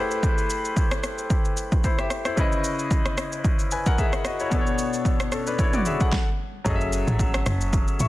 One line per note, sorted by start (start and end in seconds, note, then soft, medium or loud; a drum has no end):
0.00 2.06 A3 medium
0.00 1.80 E4 medium
0.00 1.81 G4 medium
0.00 0.10 G#4 medium
0.00 1.81 B4 medium
0.00 1.82 C5 medium
0.00 0.10 E5 medium
0.11 shaker medium
0.23 kick loud
0.23 shaker medium
0.38 shaker medium
0.50 shaker loud
0.65 shaker medium
0.77 kick loud
0.77 shaker medium
0.91 cross-stick loud
0.91 shaker soft
1.04 cross-stick medium
1.04 shaker medium
1.18 shaker medium
1.30 kick loud
1.30 shaker medium
1.45 shaker medium
1.57 shaker loud
1.72 kick loud
1.72 shaker medium
1.84 1.99 E4 medium
1.84 1.98 C5 medium
1.84 kick medium
1.84 shaker medium
1.99 2.25 G4 medium
1.99 2.24 E5 medium
1.99 cross-stick medium
1.99 shaker soft
2.10 cross-stick loud
2.10 shaker medium
2.25 2.37 E4 medium
2.25 2.51 C5 medium
2.25 cross-stick medium
2.25 shaker medium
2.36 4.47 C#3 medium
2.36 4.48 C#4 medium
2.36 3.69 E4 medium
2.36 3.70 B4 medium
2.36 kick loud
2.36 shaker medium
2.41 3.70 D#5 medium
2.52 shaker medium
2.64 shaker loud
2.79 shaker medium
2.91 kick loud
2.91 shaker medium
3.06 cross-stick medium
3.06 shaker soft
3.18 cross-stick loud
3.18 shaker medium
3.32 shaker medium
3.44 kick loud
3.44 shaker medium
3.59 shaker medium
3.71 3.86 B4 medium
3.71 3.86 G#5 medium
3.71 shaker loud
3.86 3.98 A#4 medium
3.86 3.98 F#5 medium
3.86 kick loud
3.86 shaker soft
3.98 4.24 G#4 medium
3.98 4.24 E5 medium
3.98 kick medium
3.98 shaker medium
4.13 cross-stick medium
4.13 shaker soft
4.25 4.40 F#4 medium
4.25 4.39 D#5 medium
4.25 cross-stick loud
4.25 shaker loud
4.40 4.66 E4 medium
4.40 4.60 C#5 medium
4.40 shaker medium
4.50 6.08 B2 medium
4.50 6.09 B3 medium
4.50 5.31 D4 medium
4.50 5.31 A4 medium
4.50 kick loud
4.50 shaker medium
4.55 4.60 B4 medium
4.61 5.35 C#5 medium
4.67 shaker medium
4.78 shaker loud
4.93 shaker medium
5.05 kick loud
5.05 shaker medium
5.20 cross-stick medium
5.20 shaker soft
5.32 5.47 C#4 medium
5.32 5.46 A4 medium
5.32 cross-stick medium
5.32 shaker medium
5.47 5.59 D4 medium
5.47 5.59 B4 medium
5.47 shaker medium
5.59 5.73 E4 medium
5.59 5.73 C#5 medium
5.59 kick loud
5.59 shaker medium
5.73 5.86 F#4 medium
5.73 5.85 D5 medium
5.73 mid tom loud
5.73 shaker medium
5.86 6.00 G#4 medium
5.86 6.00 E5 medium
5.86 shaker loud
6.00 6.27 A4 medium
6.00 6.26 F#5 medium
6.00 kick loud
6.00 shaker medium
6.12 kick loud
6.12 snare medium
6.64 7.05 F#1 loud
6.64 8.08 F#3 medium
6.64 8.08 C#4 medium
6.64 7.98 G#4 medium
6.64 7.98 A4 medium
6.64 kick loud
6.64 shaker medium
6.69 6.75 D#5 medium
6.75 8.00 E5 medium
6.81 shaker medium
6.93 shaker loud
7.08 7.44 A1 medium
7.08 shaker medium
7.19 kick loud
7.19 shaker medium
7.34 cross-stick loud
7.34 shaker soft
7.46 7.85 F#1 loud
7.46 cross-stick medium
7.46 shaker loud
7.61 shaker medium
7.73 kick loud
7.73 shaker medium
7.88 shaker medium
8.00 8.08 A1 medium
8.00 8.08 E5 medium
8.00 8.08 C#6 medium
8.00 shaker loud